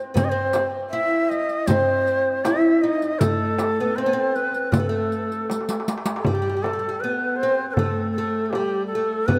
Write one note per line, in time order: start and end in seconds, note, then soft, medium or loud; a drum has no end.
0.14 0.17 B3 medium
0.14 0.30 C4 medium
0.14 0.26 C5 medium
0.14 riq medium
0.14 darbuka dum medium
0.14 frame drum medium
0.24 0.31 D#5 medium
0.29 0.64 C4 medium
0.29 0.65 C5 loud
0.53 riq medium
0.53 darbuka tek medium
0.53 frame drum medium
0.90 1.67 E4 medium
0.90 1.31 E5 medium
1.30 1.68 D#5 loud
1.30 riq soft
1.30 darbuka ka soft
1.49 riq soft
1.67 2.46 C4 medium
1.67 2.46 C5 loud
1.67 riq medium
1.67 darbuka dum medium
1.67 frame drum medium
2.07 riq soft
2.45 2.83 E4 medium
2.45 2.83 E5 medium
2.45 riq medium
2.45 darbuka tek medium
2.45 frame drum medium
2.64 darbuka ka soft
2.82 3.22 D#4 medium
2.82 3.21 D#5 medium
3.02 riq soft
3.02 darbuka ka soft
3.19 3.80 A3 medium
3.19 3.97 A4 medium
3.19 riq medium
3.19 frame drum loud
3.19 darbuka dum medium
3.58 riq medium
3.58 darbuka tek medium
3.58 frame drum medium
3.80 3.99 B3 medium
3.96 4.05 C4 medium
3.96 4.37 C5 medium
4.06 4.12 B3 medium
4.13 4.76 C4 medium
4.35 4.74 B4 medium
4.35 riq soft
4.35 darbuka ka soft
4.54 riq soft
4.54 darbuka ka soft
4.72 4.79 A3 medium
4.72 5.87 A4 medium
4.72 riq medium
4.72 darbuka dum medium
4.72 frame drum medium
4.80 4.87 B3 medium
4.89 5.84 A3 medium
5.12 riq soft
5.31 riq soft
5.31 darbuka ka soft
5.50 riq soft
5.50 darbuka tek medium
5.50 frame drum medium
5.61 darbuka ka medium
5.69 riq medium
5.69 darbuka tek medium
5.80 darbuka ka medium
5.88 riq medium
5.88 darbuka tek medium
5.98 darbuka ka medium
6.06 riq medium
6.06 darbuka tek medium
6.16 6.26 A4 medium
6.16 darbuka ka medium
6.24 6.33 G3 medium
6.24 6.64 G4 medium
6.24 frame drum medium
6.24 darbuka dum medium
6.35 6.41 G3 soft
6.42 6.48 G3 soft
6.50 6.55 G3 soft
6.57 6.63 G3 soft
6.63 6.72 G3 soft
6.63 7.02 A4 medium
6.63 darbuka tek medium
6.63 frame drum medium
6.73 6.78 G3 soft
6.79 6.86 G3 soft
6.89 6.95 G3 medium
7.01 7.41 B3 medium
7.01 7.38 B4 medium
7.36 7.69 C5 medium
7.41 7.80 C4 medium
7.41 darbuka ka soft
7.59 darbuka ka soft
7.70 8.11 A4 medium
7.70 7.75 B4 medium
7.77 8.17 A3 medium
7.77 darbuka dum medium
7.77 frame drum medium
8.11 8.46 A4 medium
8.18 8.55 A3 medium
8.34 darbuka ka soft
8.46 8.52 A4 medium
8.50 8.86 G4 medium
8.50 darbuka tek medium
8.50 frame drum medium
8.55 8.93 G3 medium
8.87 9.28 A4 medium
8.91 darbuka ka soft
8.95 9.27 A3 medium
9.10 darbuka ka soft
9.27 9.39 B3 medium
9.27 9.39 B4 medium
9.27 darbuka dum medium
9.27 frame drum medium